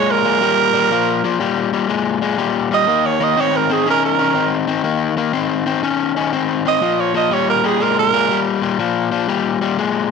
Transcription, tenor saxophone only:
0.00 0.13 C#5 medium
0.11 1.54 A#4 loud
2.74 3.08 D#5 medium
3.06 3.25 C#5 medium
3.23 3.42 D#5 medium
3.41 3.58 C#5 medium
3.56 3.74 A#4 medium
3.73 3.87 G#4 medium
3.90 4.04 A#4 medium
4.05 4.52 A#4 medium
6.68 7.02 D#5 medium
7.00 7.15 C#5 medium
7.17 7.35 D#5 medium
7.33 7.48 C#5 medium
7.50 7.68 A#4 medium
7.66 7.84 G#4 medium
7.82 7.97 A#4 medium
7.99 8.46 A#4 loud

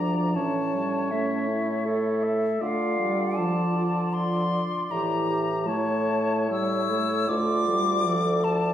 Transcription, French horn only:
0.00 0.37 F3 soft
0.36 0.76 E3 soft
0.74 1.13 G3 soft
1.12 2.61 A3 soft
2.62 2.99 A3 soft
3.00 3.40 G3 soft
3.38 4.64 F3 soft
4.91 5.69 E3 soft
5.67 6.50 A3 soft
6.51 6.92 G3 medium
6.90 7.28 A3 medium
7.29 7.66 A3 medium
7.68 8.07 G3 medium
8.06 8.74 F3 soft

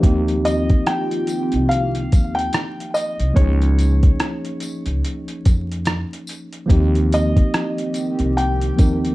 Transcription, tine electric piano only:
0.00 3.31 F3 medium
0.00 3.32 A#3 medium
0.00 3.32 C4 medium
0.04 3.33 D#4 medium
0.04 3.34 G4 medium
3.34 6.64 F3 medium
3.34 6.65 A#3 medium
3.34 6.66 C#4 medium
3.38 6.66 D#4 medium
3.38 6.67 G#4 medium
6.66 8.72 F3 medium
6.66 8.73 A#3 medium
6.66 8.74 C4 medium
6.71 8.74 D#4 medium
6.71 8.75 G4 medium
8.76 9.15 F3 medium
8.76 9.15 A#3 soft
8.76 9.15 C4 soft
8.76 9.15 D#4 soft
8.76 9.15 A#4 medium

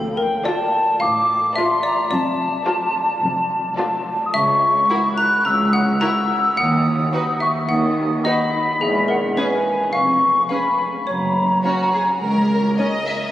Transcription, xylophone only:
0.00 0.15 A4 medium
0.17 0.43 A#4 medium
0.45 0.97 D5 medium
1.00 1.52 F5 medium
1.56 1.82 E5 medium
1.83 2.09 D5 medium
2.11 4.02 D5 medium
4.34 5.13 E5 medium
5.18 5.44 A#5 medium
5.45 5.71 A#5 medium
5.73 5.99 F#5 medium
6.01 6.53 A#5 medium
6.57 7.37 F#5 medium
7.40 7.67 E5 medium
7.69 8.21 F#5 medium
8.25 8.77 D#5 medium
8.81 9.07 G#4 medium
9.08 9.35 A#4 medium
9.37 9.89 B4 medium
9.93 10.45 F5 medium
10.49 11.02 F5 medium
11.07 12.75 C#5 medium
13.07 13.32 E5 medium

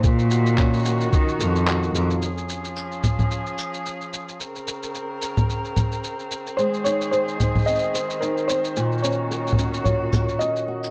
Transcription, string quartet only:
0.04 2.20 D#3 medium
0.04 2.20 A#3 medium
0.04 2.20 F#4 medium
2.21 4.38 F3 medium
2.21 4.38 C#4 medium
2.21 4.38 G#4 medium
4.40 6.56 C#3 medium
4.40 8.72 C4 medium
4.40 6.56 A#4 medium
6.59 10.90 D#3 medium
6.59 8.75 G#4 medium
8.76 10.90 A#2 medium
8.76 10.90 A#3 medium
8.76 10.90 F#4 medium

